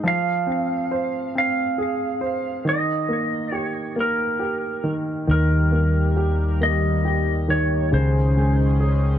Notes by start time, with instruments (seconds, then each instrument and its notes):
0.04 grand piano F3
0.08 electric slide guitar F5
0.47 grand piano C4
0.91 grand piano C5
1.35 grand piano C4, electric slide guitar F5
1.78 grand piano G#4
2.21 grand piano C5
2.65 grand piano D#3
2.69 electric slide guitar D#5
3.09 grand piano A#3
3.52 grand piano G4, electric slide guitar C#5
3.96 grand piano A#3
4.00 electric slide guitar A#4
4.39 grand piano G4
4.84 grand piano D#3
5.27 fingered electric bass D#2, grand piano D#3, analog synth pad D#3 G3 A#3 G4, electric slide guitar A#4
5.72 grand piano A#3
6.17 grand piano G4
6.61 grand piano A#3, electric slide guitar D#5
7.05 grand piano G4
7.48 grand piano D#3, electric slide guitar C#5
7.92 fingered electric bass C#2, grand piano C#3, analog synth pad G#3 C#4 G#4, electric slide guitar C5
8.37 grand piano G#3
8.80 grand piano G#4